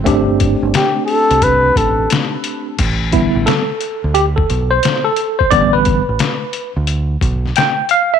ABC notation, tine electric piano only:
X:1
M:4/4
L:1/16
Q:"Swing 16ths" 1/4=88
K:Am
V:1 name="Tine electric piano"
[A,CDG]16 | z2 E2 A4 G A2 c2 A2 c | d B6 z4 z g2 f e |]
V:2 name="Tine electric piano" clef=bass
z16 | z2 [D,G,B,]2 z12 | [D,G,B,]2 z12 z2 |]